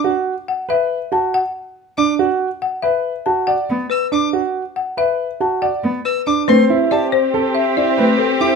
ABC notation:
X:1
M:5/4
L:1/8
Q:1/4=140
K:Bphr
V:1 name="Violin"
z8 z d' | z8 e' d' | z8 e' d' | c' z a z6 d' |]
V:2 name="Marimba"
z2 f e z a f z3 | z2 f e z a f z B z | z2 f e z a f z B z | B z d c z e d z A z |]
V:3 name="Grand piano"
F z2 B z F z3 D | F z2 B z F d z2 D | F z2 B z F d z2 D | C E G z A z E B z E |]
V:4 name="Violin section"
z8 z2 | z8 z2 | z8 z2 | [CG]8- [CG]2 |]
V:5 name="Soprano saxophone"
z8 z2 | z8 z2 | z8 z2 | C8- C2 |]
V:6 name="Cello"
z8 z2 | z6 z B, z2 | z6 z B, z2 | A, z6 A, z2 |]